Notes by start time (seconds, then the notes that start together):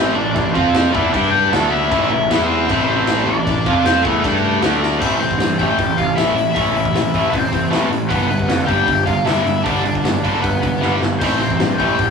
Already playing: A1 A2 E3 A3 C4 C5
0.14 A1 A2 E3 D4 D5
0.33 A1 A2 E3 D4 D5, kick, crash
0.51 F3 C4 C5
0.55 F2 C4 F4, kick
0.74 snare, crash
0.92 E2 E3 B3 D4 E4 D5, kick
1.11 G2 G3 D4 E4 G4 E5, kick, crash
1.30 G4 G5
1.50 D2 D3 A3 D4 A4 A5, snare, crash
1.70 E4 E5
1.91 A1 A2 E3 A3, kick, crash
2.09 A1 A2 E3 E4 E5
2.30 E2 E3 B3 E4, snare, crash
2.46 C4 C5
2.70 A1 A2 E3 A3, kick, crash
2.88 C4 C5
3.07 snare, crash
3.24 A1 D4 D5
3.29 A2 E3
3.47 A1 A2 E3, kick, crash
3.66 F2 F3 C4 F4, kick
3.73 D4 D5
3.85 C4 C5, snare, crash
4.03 E2 E3 A3 B3 E4 A4, kick
4.24 G2 G3 D4 G4, kick, crash
4.61 D2 D3 A3 D4, snare, crash
4.83 snare
4.99 A1 A2 E3 A3 C4 C5, kick, crash
5.19 A1 A2 E3 C4 C5, open hi-hat
5.31 kick
5.38 G2 A2 E3, snare, open hi-hat
5.58 A1 A2 E3 A3 G4 G5, kick, open hi-hat
5.79 A1 A2 E3, kick, open hi-hat
5.97 A1 A2 E3 F4 F5, kick, open hi-hat
6.15 A1 A2 E3 A3 E4 E5, snare, open hi-hat
6.34 A1 A2 E3, open hi-hat
6.53 A1 A2 E3 A3 E4 E5, kick, open hi-hat
6.73 A1 A2 E3, open hi-hat
6.85 kick
6.92 A1 A2 E3, snare, open hi-hat
7.14 A1 A2 E3 A3, kick, open hi-hat
7.32 A1 A2 E3 C4 C5, kick, open hi-hat
7.52 A1 A2 E3, kick, open hi-hat
7.71 A1 A2 E3 A3 B4, snare, open hi-hat
7.90 A1 A2 E3, open hi-hat
8.09 G1 G2 D3 G3 B3 B4, kick, open hi-hat
8.28 G1 G2 D3 B3 B4, open hi-hat
8.39 kick
8.48 F2 G2 D3, snare, open hi-hat
8.66 G1 G2 D3 G3 G4 G5, kick, open hi-hat
8.87 G1 G2 D3, kick, open hi-hat
9.06 G1 G2 D3 F4 F5, kick, open hi-hat
9.25 G1 G2 D3 G3 E4 E5, snare, open hi-hat
9.45 G1 G2 D3, open hi-hat
9.63 G1 G2 D3 G3 D4 D5, kick, open hi-hat
9.84 G1 G2 D3, open hi-hat
9.95 kick
10.04 G1 G2 D3, snare, open hi-hat
10.24 G1 G2 D3 G3, kick, open hi-hat
10.34 A4
10.42 G1 G2 D3 B3 B4, kick, open hi-hat
10.62 G1 G2 D3, kick, open hi-hat
10.80 G1 G2 D3 G3, snare
11.01 G1 G2 D3, snare
11.20 A1 A2 E3 A3 C4 C5, kick, open hi-hat, crash
11.40 A1 A2 E3 C4 C5, open hi-hat
11.50 kick
11.59 G2 A2 E3, snare, open hi-hat
11.78 A1 A2 E3 A3 G4 G5, kick, open hi-hat
11.98 A1 A2 E3, kick, open hi-hat